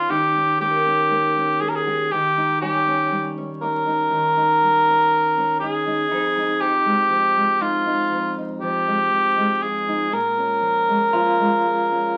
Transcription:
Already playing: A#3 C#4 F4 G4 G5
0.10 D#3 D#4 G4
0.36 C#4
0.61 A#3 G4
0.71 A#4
0.86 C#4
1.11 A#3
1.37 C#4
1.61 G4 G#4
1.69 A#4
1.76 G#4
1.87 G4
2.12 D#3 G4
2.38 D#4
2.61 G3 C#4 G4
2.87 C#4
3.11 G3
3.38 C#4
3.62 D#4 A#4
3.87 D#4
4.11 D#3
4.37 D#4
4.63 G3
4.88 C#4
5.38 C#4
5.60 D#4 G#4
5.87 D#4
6.11 F2 D#4
6.37 D#4
6.61 F3 G4
6.86 G#3
7.10 F3
7.36 G#3
7.61 D#4 F4
7.87 D#4
8.12 F2
8.38 D#4
8.61 F3 G4
8.87 G#3
9.13 F3
9.38 G#3
9.62 F4 G#4
9.88 D#4
10.12 A#2 A#4
10.38 C#4
10.61 F3
10.89 G#3
11.13 F3 F4
11.40 G#3
11.66 G#4
11.91 C#4

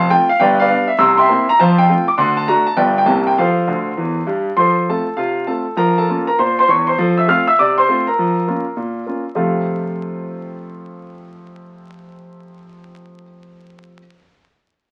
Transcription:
Already playing: F1 F2 F5 C6
0.00 A5
0.10 A3 C4 F4 G5
0.29 F5
0.40 G1 G2 B4 D5 G5
0.60 B4 D5 F5
0.70 G3 B3 D4
0.88 E5
0.99 C2 C3 A#5 C6 E6
1.18 E5 G5 C6
1.29 A#3 C4 E4
1.49 A#5
1.59 F2 F3 C5 F5 A5
1.78 G5
1.89 A3 C4 F4
2.08 D6
2.18 D2 D3 F#5 A5 C6
2.37 A5
2.48 A3 D4 F#4 A#5
2.67 A5
2.77 G1 G2 B3 D4 F4 B4 D5 G5
2.98 G5
3.06 C2 C3 A#3 C4 E4 A5
3.27 G5
3.38 F3 A4 C5 F5
3.67 D2 D3
3.97 E2 E3
4.27 G2 G3
4.57 F3 A4 C5 C6
4.89 A3 C4 F4 A4 A5
5.17 C3 F4 F5
5.47 A3 C4 F4 A4 A5
5.77 F3 A#4 A#5
5.98 A4 A5
6.09 A#3 C#4 F4
6.27 A#4 A#5
6.39 A#2 C5 C6
6.59 C5 C6
6.68 E2 E3 C#5 C#6
6.87 C5 C6
6.98 F3 A4
7.18 E5 E6
7.28 A3 C4 F4 F5 F6
7.47 E5 E6
7.59 C3 D5 D6
7.78 C5 C6
7.89 A3 C4 F4
8.07 A#4 A#5
8.18 F3
8.48 A#3 C#4 F4
8.77 A#2
9.06 A#3 C#4 F4
9.35 F2 C3 A3 C4 F4 A4 F5

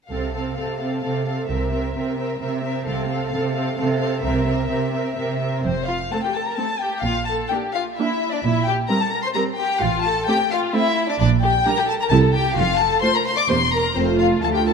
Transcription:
0.10 C2 C3 C4 A4 F5
0.33 C4 A4 F5
0.56 C3 C4 A4 F5
0.79 C4 A4 F5
1.02 C3 C4 A4 F5
1.26 C4 A4 F5
1.48 C2 C3 C4 A#4 E5
1.71 C4 A#4 E5
1.95 C3 C4 A#4 E5
2.18 C4 A#4 E5
2.40 C3 C4 A#4 E5
2.63 C4 A#4 E5
2.86 C2 C3 C4 A4 F5
3.09 C4 A4 F5
3.33 C3 C4 A4 F5
3.55 C4 A4 F5
3.77 C3 C4 A4 F5
3.99 C4 A4 F5
4.22 C2 C3 C4 A#4 E5
4.46 C4 A#4 E5
4.68 C3 C4 A#4 E5
4.93 C4 A#4 E5
5.16 C3 C4 A#4 E5
5.40 C4 A#4 E5
5.64 F1 F2 C4 C5
5.88 F4 F5
6.12 A3 C4 A4 A5
6.23 G4 G5
6.34 A4 A5
6.47 A#4 A#5
6.58 A3 C4 A4 A5
6.81 G4 G5
7.03 A#1 A#2 F4 F5
7.27 A4 A5
7.49 A#3 D4 G4 G5
7.73 F4 F5
7.96 A#3 D4 E4 E5
8.32 D4 D5
8.41 A#1 A#2 E4 E5
8.65 G4 G5
8.89 G3 C4 A#4 A#5
9.00 A4 A5
9.12 A#4 A#5
9.24 C5 C6
9.35 G3 C4 A#4 A#5
9.58 G4 G5
9.81 A1 A2 F4 F5
10.03 A4 A5
10.27 A3 C4 G4 G5
10.51 F4 F5
10.74 A3 C4 E4 E5
11.09 D4 D5
11.20 A#1 A#2 D4 D5
11.43 G4 G5
11.66 G3 D4 A#4 A#5
11.78 G4 G5
11.89 A4 A5
12.01 A#4 A#5
12.10 C2 C3 G3 E4 A4 A5
12.34 G4 G5
12.56 F1 F2 F4 F5
12.80 A4 A5
13.02 A3 F4 C5 C6
13.15 A#4 A#5
13.26 C5 C6
13.37 D5 D6
13.48 E1 E2 A#3 G4 C5 C6
13.72 A#4 A#5
13.95 F1 F2 A3 C4 F4 C5
14.19 F4 F5
14.41 D2 A3 F4 A4 A5
14.53 G4 G5
14.66 A4 A5

